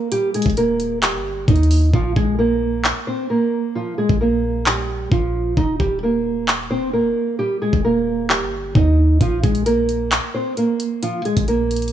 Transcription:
0.12 nylon-string guitar G3 G4, closed hi-hat
0.34 nylon-string guitar G#3 G#4, closed hi-hat
0.42 808-style bass D#1, kick, closed hi-hat
0.50 closed hi-hat
0.57 nylon-string guitar A#3 A#4, closed hi-hat
0.80 closed hi-hat
1.02 nylon-string guitar G3 G4, clap, closed hi-hat
1.14 808-style bass G1
1.48 808-style bass D#2, nylon-string guitar D#4 D#5, kick, closed hi-hat
1.56 closed hi-hat
1.63 closed hi-hat
1.71 open hi-hat
1.94 808-style bass A#1, nylon-string guitar F3 F4, kick
2.16 808-style bass A#1, nylon-string guitar G#3 G#4, kick
2.39 nylon-string guitar A#3 A#4
2.84 clap
3.07 nylon-string guitar C4 C5
3.30 nylon-string guitar A#3 A#4
3.75 nylon-string guitar F3 F4
3.98 nylon-string guitar G#3 G#4
4.09 808-style bass A#1, kick
4.21 nylon-string guitar A#3 A#4
4.66 nylon-string guitar G3 G4, clap
5.12 808-style bass A#1, nylon-string guitar F3 F4, kick
5.57 808-style bass D#1, nylon-string guitar D#4 D#5, kick
5.80 808-style bass D#1, nylon-string guitar G3 G4, kick
6.03 nylon-string guitar A#3 A#4
6.48 clap
6.70 nylon-string guitar C4 C5
6.93 nylon-string guitar A#3 A#4
7.39 nylon-string guitar G3 G4
7.62 nylon-string guitar G#3 G#4
7.73 808-style bass D#1, kick
7.85 nylon-string guitar A#3 A#4
8.30 nylon-string guitar G3 G4, clap
8.41 808-style bass G1
8.75 808-style bass D#2, nylon-string guitar D#4 D#5, kick
9.21 808-style bass A#1, nylon-string guitar F3 F4, kick, closed hi-hat
9.43 808-style bass A#1, nylon-string guitar G#3 G#4, kick, closed hi-hat
9.55 closed hi-hat
9.66 nylon-string guitar A#3 A#4, closed hi-hat
9.89 closed hi-hat
10.12 clap, closed hi-hat
10.34 nylon-string guitar C4 C5
10.57 nylon-string guitar A#3 A#4, closed hi-hat
10.80 closed hi-hat
11.03 nylon-string guitar F3 F4, closed hi-hat
11.25 nylon-string guitar G#3 G#4, closed hi-hat
11.37 808-style bass A#1, kick, closed hi-hat
11.48 nylon-string guitar A#3 A#4, closed hi-hat
11.71 closed hi-hat
11.76 closed hi-hat
11.82 closed hi-hat
11.88 closed hi-hat

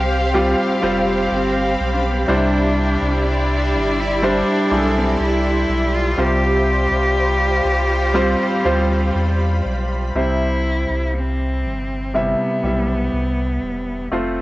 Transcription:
Already playing: sub bass C2, grand piano G3 C4 F4 C5, cello G3, violin section C4 G4 F5, ambient pad G4 C5 F5 C6
0.34 grand piano G3 C4 F4 G4, ambient pad B5
0.82 sub bass F1, grand piano G3 C4 F4 C5
1.31 sub bass G1, cello C4
1.80 sub bass B1
1.94 cello D4
2.03 cello C4
2.11 cello B3
2.20 cello C4
2.27 sub bass C2, grand piano C3 G3 D4 E4 C5, violin section G3 E4 D5, cello D4, ambient pad G4 D5 E5 C6
3.02 sub bass C2
3.28 cello D4
3.74 sub bass G1
4.01 cello E4
4.22 grand piano G3 D4 E4 C5, cello D4
4.71 sub bass B1, grand piano G3 D4 E4 G#4
4.78 grand piano A4
4.98 cello C4
5.20 sub bass C2, cello E4
5.69 sub bass B1
5.96 cello F4
6.17 sub bass C2, grand piano C3 G3 C4 F4 C5, violin section G3 F4 C5, ambient pad G4 C5 F5, cello G4
6.91 sub bass C2
7.65 sub bass C2
8.14 grand piano G3 C4 F4 C5, ambient pad B5
8.65 sub bass D2, grand piano G3 C4 F4 C5
9.15 sub bass E2
9.65 sub bass B1
10.15 sub bass C2, grand piano C3 G3 C4 E4 C5, cello E4
10.90 sub bass C2
11.18 cello C4
11.64 sub bass G1
12.14 grand piano C3 G3 E4 E5, cello B3
12.63 sub bass B1, grand piano G3 E4 E5
13.13 sub bass C2
13.63 sub bass E1
14.11 sub bass F1, grand piano A3 C4 F4 C5, cello A3

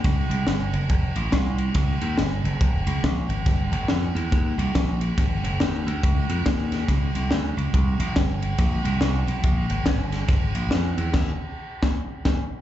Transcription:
0.04 slap bass C#2, kick, snare, ride bell
0.30 slap bass C2, ride bell
0.47 slap bass G1, snare, ride bell
0.73 slap bass F#1, ride bell
0.90 slap bass F1, kick, ride bell
1.16 slap bass A1, ride bell
1.32 slap bass C2, kick, snare, ride bell
1.58 ride bell
1.74 slap bass C#2, kick, snare, ride bell
2.01 slap bass D#2, ride bell
2.18 slap bass G1, snare, ride bell
2.44 slap bass F#1, ride bell
2.61 slap bass F1, kick, ride bell
2.86 slap bass C#2, ride bell
3.04 slap bass A#1, kick, snare, ride bell
3.29 slap bass G#1, ride bell
3.46 slap bass G1, kick, snare, ride bell
3.72 slap bass G#1, ride bell
3.88 slap bass F2, snare, ride bell
4.15 slap bass E2, ride bell
4.32 slap bass D#2, kick, ride bell
4.58 slap bass C2, ride bell
4.75 slap bass A#1, kick, snare, ride bell
5.01 ride bell
5.18 slap bass G#1, kick, snare, ride bell
5.43 slap bass F#1, ride bell
5.60 slap bass D#2, snare, ride bell
5.86 slap bass D2, ride bell
6.03 slap bass C#2, kick, ride bell
6.29 slap bass F2, ride bell
6.46 slap bass D#2, kick, snare, ride bell
6.72 snare, ride bell
6.88 slap bass C#2, kick, snare, ride bell
7.15 slap bass C2, ride bell
7.31 slap bass D2, snare, ride bell
7.57 slap bass C#2, ride bell
7.74 slap bass C2, kick, ride bell
7.99 slap bass A#1, ride bell
8.16 slap bass G1, kick, snare, ride bell
8.42 ride bell
8.58 slap bass A#1, kick, snare, ride bell
8.85 slap bass C2, ride bell
9.01 slap bass C2, snare, ride bell
9.27 slap bass B1, ride bell
9.43 slap bass A#1, kick, ride bell
9.70 slap bass G#1, ride bell
9.86 slap bass G1, kick, snare, ride bell
10.12 snare, ride bell
10.28 slap bass G#1, kick, snare, ride bell
10.55 slap bass A#1, ride bell
10.71 slap bass F2, snare, ride bell
10.97 slap bass E2, ride bell
11.14 slap bass D#2, kick, snare, crash
11.82 slap bass D#2, kick, snare
12.25 slap bass D#2, kick, snare

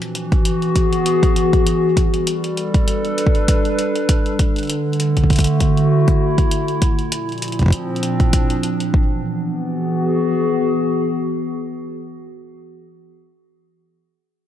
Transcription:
Already playing: ambient pad E3 F#4
0.02 closed hi-hat
0.15 closed hi-hat
0.30 ambient pad B3, kick, closed hi-hat
0.45 ambient pad G#4, closed hi-hat
0.62 closed hi-hat
0.76 kick, closed hi-hat
0.93 closed hi-hat
1.06 closed hi-hat
1.23 kick, closed hi-hat
1.36 closed hi-hat
1.53 kick, closed hi-hat
1.67 closed hi-hat
1.97 ambient pad G3, kick, closed hi-hat
2.14 closed hi-hat
2.24 ambient pad A4, closed hi-hat
2.44 ambient pad B4, closed hi-hat
2.51 ambient pad D4
2.57 closed hi-hat
2.74 kick, closed hi-hat
2.88 closed hi-hat
3.05 closed hi-hat
3.18 closed hi-hat
3.27 kick
3.35 closed hi-hat
3.48 kick, closed hi-hat
3.65 closed hi-hat
3.79 closed hi-hat
3.96 closed hi-hat
4.09 kick, closed hi-hat
4.26 closed hi-hat
4.39 ambient pad D3, kick, closed hi-hat
4.56 closed hi-hat
4.58 closed hi-hat
4.63 closed hi-hat
4.65 closed hi-hat
4.67 closed hi-hat
4.70 closed hi-hat
4.75 ambient pad A3
4.93 closed hi-hat
5.00 closed hi-hat
5.17 kick, closed hi-hat
5.24 kick
5.30 kick, closed hi-hat
5.33 closed hi-hat
5.36 closed hi-hat
5.39 kick, closed hi-hat
5.40 closed hi-hat
5.44 closed hi-hat
5.47 ambient pad E4 F#4, closed hi-hat
5.60 kick, closed hi-hat
5.77 closed hi-hat
6.08 kick, closed hi-hat
6.38 kick, closed hi-hat
6.51 closed hi-hat
6.68 closed hi-hat
6.82 ambient pad A#2, kick, closed hi-hat
6.99 closed hi-hat
7.10 ambient pad F3, closed hi-hat
7.29 closed hi-hat
7.32 closed hi-hat
7.38 ambient pad C4, closed hi-hat
7.42 closed hi-hat
7.48 closed hi-hat
7.52 closed hi-hat
7.59 kick, closed hi-hat
7.62 kick
7.66 kick
7.68 kick
7.70 kick, closed hi-hat
7.80 ambient pad D4
7.96 closed hi-hat
8.03 closed hi-hat
8.20 kick, closed hi-hat
8.33 kick, closed hi-hat
8.50 closed hi-hat
8.63 closed hi-hat
8.80 closed hi-hat
8.94 ambient pad E3, kick
9.04 ambient pad B3
9.44 ambient pad F#4
9.52 ambient pad G#4

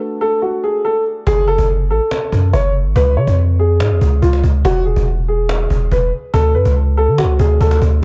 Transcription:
Already playing: felt piano A3 D4 F#4 A4
0.21 grand piano A4
0.42 grand piano F#4
0.64 grand piano G#4
0.85 grand piano A4
1.27 808-style bass F#1, grand piano G#4, cajon bass
1.48 grand piano A4
1.58 808-style bass F#1, cajon bass
1.90 808-style bass A1, grand piano A4
2.11 cajon slap
2.32 808-style bass F#2, cajon bass
2.53 808-style bass F#1, grand piano C#5, cajon bass
2.85 808-style bass G#1
2.96 808-style bass C#2, grand piano B4, cajon bass
3.17 808-style bass C#3, grand piano C#5
3.27 808-style bass F2, cajon bass
3.59 grand piano G#4
3.80 808-style bass G#2, cajon slap
3.91 808-style bass F2
4.01 808-style bass C#2, cajon bass
4.22 808-style bass C#2, grand piano F4, cajon bass
4.33 cajon slap
4.44 808-style bass C#2, cajon bass
4.65 808-style bass E1, grand piano F#4, cajon bass
4.85 grand piano G#4
4.96 808-style bass E1, cajon bass
5.28 grand piano G#4
5.49 cajon slap
5.70 808-style bass E1, cajon bass
5.91 808-style bass E1, grand piano B4, cajon bass
6.34 808-style bass D2, grand piano A4, cajon bass
6.55 808-style bass F#2, grand piano B4
6.65 808-style bass C#2, cajon bass
6.97 grand piano A4
7.08 808-style bass D3
7.18 grand piano F#4, cajon slap
7.24 808-style bass C#2
7.39 808-style bass D2, grand piano G#4, cajon bass
7.61 808-style bass D2, grand piano A4, cajon bass
7.71 cajon slap
7.82 808-style bass D2, cajon bass

